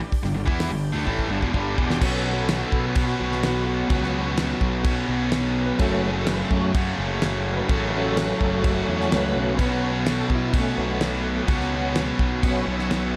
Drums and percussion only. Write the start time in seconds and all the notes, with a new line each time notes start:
0.12 kick, open hi-hat
0.24 snare
0.48 kick
0.60 snare, open hi-hat
1.07 kick
1.19 kick
1.43 kick
1.54 kick
1.78 kick
1.90 snare
2.02 kick, crash
2.48 snare, crash
2.72 kick
2.95 kick, crash
3.32 snare
3.43 snare, crash
3.90 kick, crash
4.03 snare
4.37 snare, crash
4.61 kick
4.84 kick, crash
5.32 snare, crash
5.79 kick, crash
6.27 snare, crash
6.51 kick
6.74 kick, crash
7.22 snare, crash
7.69 kick, crash
8.17 snare, crash
8.41 kick
8.64 kick, crash
9.01 snare
9.12 snare, crash
9.59 kick, crash
10.06 snare, crash
10.30 kick
10.54 kick, crash
11.01 snare, crash
11.48 kick, crash
11.61 snare
11.95 snare, crash
12.19 kick
12.43 kick, crash
12.79 snare
12.91 snare, crash